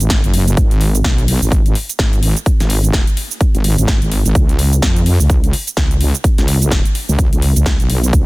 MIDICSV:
0, 0, Header, 1, 4, 480
1, 0, Start_track
1, 0, Tempo, 472441
1, 581, Time_signature, 4, 2, 24, 8
1, 8391, End_track
2, 0, Start_track
2, 0, Title_t, "Wobble bass"
2, 0, Program_c, 0, 39
2, 3, Note_on_c, 0, 32, 100
2, 220, Note_off_c, 0, 32, 0
2, 242, Note_on_c, 0, 30, 101
2, 565, Note_off_c, 0, 30, 0
2, 581, Note_on_c, 0, 32, 99
2, 1045, Note_off_c, 0, 32, 0
2, 1061, Note_on_c, 0, 35, 100
2, 1420, Note_off_c, 0, 35, 0
2, 1442, Note_on_c, 0, 32, 100
2, 1764, Note_off_c, 0, 32, 0
2, 2021, Note_on_c, 0, 32, 93
2, 2380, Note_off_c, 0, 32, 0
2, 2642, Note_on_c, 0, 32, 98
2, 3100, Note_off_c, 0, 32, 0
2, 3602, Note_on_c, 0, 32, 97
2, 3820, Note_off_c, 0, 32, 0
2, 3843, Note_on_c, 0, 32, 103
2, 4060, Note_off_c, 0, 32, 0
2, 4083, Note_on_c, 0, 32, 96
2, 4301, Note_off_c, 0, 32, 0
2, 4322, Note_on_c, 0, 32, 95
2, 4405, Note_off_c, 0, 32, 0
2, 4421, Note_on_c, 0, 37, 97
2, 4885, Note_off_c, 0, 37, 0
2, 4901, Note_on_c, 0, 41, 100
2, 5260, Note_off_c, 0, 41, 0
2, 5282, Note_on_c, 0, 37, 97
2, 5605, Note_off_c, 0, 37, 0
2, 5861, Note_on_c, 0, 37, 98
2, 6220, Note_off_c, 0, 37, 0
2, 6483, Note_on_c, 0, 37, 97
2, 6940, Note_off_c, 0, 37, 0
2, 7203, Note_on_c, 0, 37, 103
2, 7420, Note_off_c, 0, 37, 0
2, 7442, Note_on_c, 0, 37, 96
2, 7660, Note_off_c, 0, 37, 0
2, 7683, Note_on_c, 0, 37, 96
2, 7900, Note_off_c, 0, 37, 0
2, 7923, Note_on_c, 0, 35, 98
2, 8245, Note_off_c, 0, 35, 0
2, 8261, Note_on_c, 0, 37, 99
2, 8391, Note_off_c, 0, 37, 0
2, 8391, End_track
3, 0, Start_track
3, 0, Title_t, "Downlifter"
3, 0, Program_c, 1, 103
3, 0, Note_on_c, 1, 60, 77
3, 581, Note_off_c, 1, 60, 0
3, 8391, End_track
4, 0, Start_track
4, 0, Title_t, "Drums"
4, 4, Note_on_c, 9, 42, 37
4, 6, Note_on_c, 9, 82, 63
4, 101, Note_off_c, 9, 42, 0
4, 101, Note_on_c, 9, 36, 116
4, 101, Note_on_c, 9, 42, 79
4, 103, Note_on_c, 9, 38, 124
4, 104, Note_off_c, 9, 82, 0
4, 104, Note_on_c, 9, 82, 54
4, 202, Note_off_c, 9, 36, 0
4, 202, Note_off_c, 9, 42, 0
4, 204, Note_off_c, 9, 38, 0
4, 205, Note_off_c, 9, 82, 0
4, 244, Note_on_c, 9, 42, 57
4, 246, Note_on_c, 9, 82, 33
4, 341, Note_on_c, 9, 46, 112
4, 345, Note_off_c, 9, 42, 0
4, 348, Note_off_c, 9, 82, 0
4, 442, Note_off_c, 9, 46, 0
4, 483, Note_on_c, 9, 42, 38
4, 486, Note_on_c, 9, 82, 68
4, 581, Note_off_c, 9, 42, 0
4, 581, Note_on_c, 9, 36, 124
4, 581, Note_on_c, 9, 42, 76
4, 584, Note_off_c, 9, 82, 0
4, 584, Note_on_c, 9, 82, 54
4, 682, Note_off_c, 9, 42, 0
4, 683, Note_off_c, 9, 36, 0
4, 685, Note_off_c, 9, 82, 0
4, 723, Note_on_c, 9, 42, 54
4, 726, Note_on_c, 9, 82, 32
4, 820, Note_on_c, 9, 46, 112
4, 824, Note_off_c, 9, 42, 0
4, 827, Note_off_c, 9, 82, 0
4, 922, Note_off_c, 9, 46, 0
4, 963, Note_on_c, 9, 42, 35
4, 966, Note_on_c, 9, 82, 65
4, 1061, Note_off_c, 9, 42, 0
4, 1061, Note_on_c, 9, 36, 111
4, 1061, Note_on_c, 9, 42, 75
4, 1063, Note_on_c, 9, 38, 124
4, 1064, Note_off_c, 9, 82, 0
4, 1064, Note_on_c, 9, 82, 51
4, 1163, Note_off_c, 9, 36, 0
4, 1163, Note_off_c, 9, 42, 0
4, 1165, Note_off_c, 9, 38, 0
4, 1166, Note_off_c, 9, 82, 0
4, 1203, Note_on_c, 9, 42, 53
4, 1206, Note_on_c, 9, 82, 33
4, 1301, Note_on_c, 9, 46, 108
4, 1305, Note_off_c, 9, 42, 0
4, 1308, Note_off_c, 9, 82, 0
4, 1403, Note_off_c, 9, 46, 0
4, 1447, Note_on_c, 9, 82, 64
4, 1541, Note_on_c, 9, 36, 127
4, 1542, Note_on_c, 9, 42, 80
4, 1545, Note_off_c, 9, 82, 0
4, 1545, Note_on_c, 9, 82, 52
4, 1643, Note_off_c, 9, 36, 0
4, 1643, Note_off_c, 9, 42, 0
4, 1646, Note_off_c, 9, 82, 0
4, 1685, Note_on_c, 9, 42, 53
4, 1688, Note_on_c, 9, 82, 32
4, 1781, Note_on_c, 9, 46, 109
4, 1786, Note_off_c, 9, 42, 0
4, 1789, Note_off_c, 9, 82, 0
4, 1883, Note_off_c, 9, 46, 0
4, 1925, Note_on_c, 9, 42, 35
4, 1927, Note_on_c, 9, 82, 64
4, 2021, Note_on_c, 9, 36, 113
4, 2022, Note_off_c, 9, 42, 0
4, 2022, Note_on_c, 9, 42, 77
4, 2024, Note_on_c, 9, 38, 119
4, 2025, Note_off_c, 9, 82, 0
4, 2025, Note_on_c, 9, 82, 54
4, 2122, Note_off_c, 9, 36, 0
4, 2123, Note_off_c, 9, 42, 0
4, 2125, Note_off_c, 9, 38, 0
4, 2126, Note_off_c, 9, 82, 0
4, 2164, Note_on_c, 9, 42, 51
4, 2167, Note_on_c, 9, 82, 32
4, 2262, Note_on_c, 9, 46, 114
4, 2266, Note_off_c, 9, 42, 0
4, 2269, Note_off_c, 9, 82, 0
4, 2363, Note_off_c, 9, 46, 0
4, 2404, Note_on_c, 9, 42, 38
4, 2407, Note_on_c, 9, 82, 63
4, 2501, Note_on_c, 9, 36, 127
4, 2502, Note_off_c, 9, 42, 0
4, 2502, Note_on_c, 9, 42, 76
4, 2505, Note_off_c, 9, 82, 0
4, 2505, Note_on_c, 9, 82, 55
4, 2602, Note_off_c, 9, 36, 0
4, 2603, Note_off_c, 9, 42, 0
4, 2606, Note_off_c, 9, 82, 0
4, 2644, Note_on_c, 9, 42, 52
4, 2646, Note_on_c, 9, 38, 38
4, 2647, Note_on_c, 9, 82, 34
4, 2741, Note_on_c, 9, 46, 109
4, 2746, Note_off_c, 9, 42, 0
4, 2748, Note_off_c, 9, 38, 0
4, 2749, Note_off_c, 9, 82, 0
4, 2843, Note_off_c, 9, 46, 0
4, 2884, Note_on_c, 9, 42, 35
4, 2887, Note_on_c, 9, 82, 65
4, 2981, Note_on_c, 9, 36, 110
4, 2982, Note_off_c, 9, 42, 0
4, 2982, Note_on_c, 9, 42, 71
4, 2984, Note_on_c, 9, 38, 121
4, 2985, Note_off_c, 9, 82, 0
4, 2985, Note_on_c, 9, 82, 53
4, 3082, Note_off_c, 9, 36, 0
4, 3083, Note_off_c, 9, 42, 0
4, 3086, Note_off_c, 9, 38, 0
4, 3086, Note_off_c, 9, 82, 0
4, 3124, Note_on_c, 9, 42, 50
4, 3127, Note_on_c, 9, 82, 33
4, 3221, Note_on_c, 9, 46, 106
4, 3225, Note_off_c, 9, 42, 0
4, 3228, Note_off_c, 9, 82, 0
4, 3323, Note_off_c, 9, 46, 0
4, 3366, Note_on_c, 9, 82, 65
4, 3461, Note_on_c, 9, 36, 121
4, 3461, Note_on_c, 9, 42, 74
4, 3464, Note_off_c, 9, 82, 0
4, 3464, Note_on_c, 9, 82, 55
4, 3562, Note_off_c, 9, 36, 0
4, 3563, Note_off_c, 9, 42, 0
4, 3565, Note_off_c, 9, 82, 0
4, 3603, Note_on_c, 9, 42, 51
4, 3606, Note_on_c, 9, 82, 33
4, 3701, Note_on_c, 9, 46, 111
4, 3705, Note_off_c, 9, 42, 0
4, 3708, Note_off_c, 9, 82, 0
4, 3802, Note_off_c, 9, 46, 0
4, 3844, Note_on_c, 9, 42, 36
4, 3847, Note_on_c, 9, 82, 63
4, 3941, Note_off_c, 9, 42, 0
4, 3941, Note_on_c, 9, 36, 114
4, 3941, Note_on_c, 9, 42, 75
4, 3944, Note_off_c, 9, 82, 0
4, 3944, Note_on_c, 9, 38, 116
4, 3944, Note_on_c, 9, 82, 55
4, 4042, Note_off_c, 9, 36, 0
4, 4043, Note_off_c, 9, 42, 0
4, 4045, Note_off_c, 9, 38, 0
4, 4046, Note_off_c, 9, 82, 0
4, 4084, Note_on_c, 9, 42, 52
4, 4087, Note_on_c, 9, 82, 33
4, 4181, Note_on_c, 9, 46, 112
4, 4185, Note_off_c, 9, 42, 0
4, 4188, Note_off_c, 9, 82, 0
4, 4283, Note_off_c, 9, 46, 0
4, 4324, Note_on_c, 9, 42, 37
4, 4327, Note_on_c, 9, 82, 67
4, 4421, Note_on_c, 9, 36, 127
4, 4422, Note_off_c, 9, 42, 0
4, 4422, Note_on_c, 9, 42, 78
4, 4425, Note_off_c, 9, 82, 0
4, 4425, Note_on_c, 9, 82, 55
4, 4523, Note_off_c, 9, 36, 0
4, 4524, Note_off_c, 9, 42, 0
4, 4527, Note_off_c, 9, 82, 0
4, 4564, Note_on_c, 9, 42, 54
4, 4567, Note_on_c, 9, 82, 36
4, 4662, Note_on_c, 9, 46, 107
4, 4666, Note_off_c, 9, 42, 0
4, 4669, Note_off_c, 9, 82, 0
4, 4763, Note_off_c, 9, 46, 0
4, 4804, Note_on_c, 9, 42, 36
4, 4807, Note_on_c, 9, 82, 67
4, 4901, Note_off_c, 9, 42, 0
4, 4901, Note_on_c, 9, 36, 108
4, 4901, Note_on_c, 9, 42, 76
4, 4904, Note_off_c, 9, 82, 0
4, 4904, Note_on_c, 9, 38, 115
4, 4904, Note_on_c, 9, 82, 54
4, 5003, Note_off_c, 9, 36, 0
4, 5003, Note_off_c, 9, 42, 0
4, 5005, Note_off_c, 9, 38, 0
4, 5006, Note_off_c, 9, 82, 0
4, 5044, Note_on_c, 9, 42, 51
4, 5046, Note_on_c, 9, 82, 33
4, 5142, Note_on_c, 9, 46, 101
4, 5145, Note_off_c, 9, 42, 0
4, 5148, Note_off_c, 9, 82, 0
4, 5243, Note_off_c, 9, 46, 0
4, 5287, Note_on_c, 9, 82, 68
4, 5381, Note_on_c, 9, 36, 121
4, 5382, Note_on_c, 9, 42, 76
4, 5385, Note_off_c, 9, 82, 0
4, 5385, Note_on_c, 9, 82, 54
4, 5483, Note_off_c, 9, 36, 0
4, 5483, Note_off_c, 9, 42, 0
4, 5486, Note_off_c, 9, 82, 0
4, 5524, Note_on_c, 9, 42, 54
4, 5527, Note_on_c, 9, 82, 35
4, 5622, Note_on_c, 9, 46, 104
4, 5626, Note_off_c, 9, 42, 0
4, 5629, Note_off_c, 9, 82, 0
4, 5723, Note_off_c, 9, 46, 0
4, 5765, Note_on_c, 9, 42, 34
4, 5767, Note_on_c, 9, 82, 66
4, 5861, Note_on_c, 9, 36, 112
4, 5862, Note_off_c, 9, 42, 0
4, 5862, Note_on_c, 9, 42, 77
4, 5864, Note_on_c, 9, 38, 112
4, 5865, Note_off_c, 9, 82, 0
4, 5865, Note_on_c, 9, 82, 56
4, 5963, Note_off_c, 9, 36, 0
4, 5964, Note_off_c, 9, 42, 0
4, 5966, Note_off_c, 9, 38, 0
4, 5967, Note_off_c, 9, 82, 0
4, 6005, Note_on_c, 9, 42, 52
4, 6008, Note_on_c, 9, 82, 35
4, 6102, Note_on_c, 9, 46, 105
4, 6106, Note_off_c, 9, 42, 0
4, 6109, Note_off_c, 9, 82, 0
4, 6204, Note_off_c, 9, 46, 0
4, 6245, Note_on_c, 9, 42, 36
4, 6247, Note_on_c, 9, 82, 69
4, 6341, Note_on_c, 9, 36, 119
4, 6343, Note_off_c, 9, 42, 0
4, 6343, Note_on_c, 9, 42, 77
4, 6346, Note_off_c, 9, 82, 0
4, 6346, Note_on_c, 9, 82, 59
4, 6443, Note_off_c, 9, 36, 0
4, 6445, Note_off_c, 9, 42, 0
4, 6447, Note_off_c, 9, 82, 0
4, 6484, Note_on_c, 9, 42, 53
4, 6487, Note_on_c, 9, 38, 36
4, 6487, Note_on_c, 9, 82, 37
4, 6582, Note_on_c, 9, 46, 105
4, 6586, Note_off_c, 9, 42, 0
4, 6588, Note_off_c, 9, 38, 0
4, 6589, Note_off_c, 9, 82, 0
4, 6684, Note_off_c, 9, 46, 0
4, 6725, Note_on_c, 9, 42, 37
4, 6728, Note_on_c, 9, 82, 72
4, 6821, Note_on_c, 9, 36, 104
4, 6822, Note_off_c, 9, 42, 0
4, 6822, Note_on_c, 9, 42, 78
4, 6824, Note_on_c, 9, 38, 113
4, 6825, Note_off_c, 9, 82, 0
4, 6825, Note_on_c, 9, 82, 58
4, 6923, Note_off_c, 9, 36, 0
4, 6924, Note_off_c, 9, 42, 0
4, 6926, Note_off_c, 9, 38, 0
4, 6927, Note_off_c, 9, 82, 0
4, 6965, Note_on_c, 9, 42, 52
4, 6967, Note_on_c, 9, 82, 36
4, 7062, Note_on_c, 9, 46, 99
4, 7066, Note_off_c, 9, 42, 0
4, 7069, Note_off_c, 9, 82, 0
4, 7163, Note_off_c, 9, 46, 0
4, 7207, Note_on_c, 9, 82, 73
4, 7301, Note_on_c, 9, 36, 114
4, 7302, Note_on_c, 9, 42, 79
4, 7304, Note_off_c, 9, 82, 0
4, 7304, Note_on_c, 9, 82, 59
4, 7403, Note_off_c, 9, 36, 0
4, 7403, Note_off_c, 9, 42, 0
4, 7406, Note_off_c, 9, 82, 0
4, 7444, Note_on_c, 9, 42, 55
4, 7447, Note_on_c, 9, 82, 37
4, 7541, Note_on_c, 9, 46, 103
4, 7546, Note_off_c, 9, 42, 0
4, 7549, Note_off_c, 9, 82, 0
4, 7643, Note_off_c, 9, 46, 0
4, 7684, Note_on_c, 9, 42, 37
4, 7687, Note_on_c, 9, 82, 72
4, 7781, Note_on_c, 9, 36, 106
4, 7782, Note_off_c, 9, 42, 0
4, 7782, Note_on_c, 9, 42, 82
4, 7784, Note_on_c, 9, 38, 114
4, 7785, Note_off_c, 9, 82, 0
4, 7785, Note_on_c, 9, 82, 60
4, 7883, Note_off_c, 9, 36, 0
4, 7883, Note_off_c, 9, 42, 0
4, 7885, Note_off_c, 9, 38, 0
4, 7886, Note_off_c, 9, 82, 0
4, 7924, Note_on_c, 9, 42, 54
4, 7927, Note_on_c, 9, 82, 37
4, 8022, Note_on_c, 9, 46, 102
4, 8026, Note_off_c, 9, 42, 0
4, 8029, Note_off_c, 9, 82, 0
4, 8124, Note_off_c, 9, 46, 0
4, 8165, Note_on_c, 9, 42, 38
4, 8168, Note_on_c, 9, 82, 74
4, 8261, Note_on_c, 9, 36, 120
4, 8262, Note_off_c, 9, 42, 0
4, 8262, Note_on_c, 9, 42, 83
4, 8265, Note_off_c, 9, 82, 0
4, 8265, Note_on_c, 9, 82, 58
4, 8363, Note_off_c, 9, 36, 0
4, 8364, Note_off_c, 9, 42, 0
4, 8367, Note_off_c, 9, 82, 0
4, 8391, End_track
0, 0, End_of_file